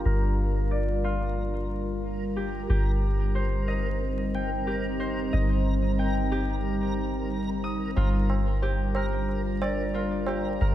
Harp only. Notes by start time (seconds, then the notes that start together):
Already playing: F4 G4 D5
0.05 A#4
0.71 D5
1.04 F4
2.36 G4
2.70 G4
3.35 C5
3.68 D#5
4.34 G5
4.67 G4
5.00 C5
5.33 D#5
5.99 G5
6.32 G4
7.64 D#6
7.97 F4
8.62 G4
8.96 A#4
9.62 D5
9.94 F4
10.28 G4
10.61 A#4